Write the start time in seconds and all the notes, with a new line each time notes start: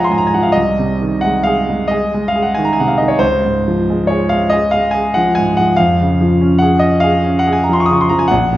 Already playing: C#2 F3 G#3 G#4 C#5 D#5 F5 F#5 G#5
0.00 A#5
0.04 C6
0.11 G#2 G#5
0.18 A#5
0.27 G#5
0.34 F3 F#5
0.43 F5
0.52 C2 D#5
0.79 C3
1.02 D#3
1.21 G#3 F#5
1.43 G#4 F5
1.69 G#3
1.88 G#4 D#5
2.14 G#3
2.28 F5
2.36 G#4
2.43 F#5
2.55 D#3 G#5
2.65 A#5
2.73 G#5
2.80 C3 F#5
2.88 F5
2.98 D#3 D#5
3.08 C#5
3.18 C#2 C5
3.45 G#2
3.68 F3
3.90 G#3
4.07 G#4 C#5
4.29 G#3 F5
4.50 G#4 D#5
4.71 G#3 F5
4.91 G#4 G#5
5.14 F3 F#5
5.35 G#2 G#5
5.57 F3 F#5
5.77 F2 F5
6.01 C#3
6.21 F3
6.41 C#4
6.58 G#4 F#5
6.79 C#4 D#5
7.00 G#4 F5
7.25 C#4
7.39 F#5
7.47 G#4
7.53 G#5
7.64 A#5
7.69 F3 C6
7.80 C#6
7.86 C#3 D#6
7.93 C#6
8.01 C6
8.09 F3 A#5
8.19 G#5
8.28 A#1 F#5
8.52 A#2